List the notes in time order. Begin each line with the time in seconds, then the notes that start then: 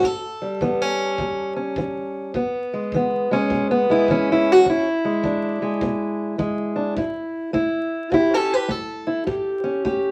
0.03 A2 A4, kick
0.42 G3
0.61 E3 B3, kick
0.82 C#4
1.18 E2, kick
1.56 C#4
1.76 E3, kick
2.34 E2 B3, kick
2.73 G#3
2.92 E3 B3, kick
3.31 G#3 C#4
3.50 B2, kick
3.71 B3
3.90 G#3 E4
4.08 E3 C#4, kick
4.32 E4
4.52 F#4
4.65 E2, kick
4.70 E4
5.05 G#3
5.23 E3 D4, kick
5.62 G#3
5.81 B2, kick
6.38 E3 G#3, kick
6.76 D4
6.97 A2 E4, kick
7.53 A3 E4, kick
8.11 E2 E4 G4, kick
8.34 C#4 A4
8.53 G4 B4
8.68 A3 A4, kick
9.07 E4
9.27 A2 G4, kick
9.64 C#4
9.85 A3 G4, kick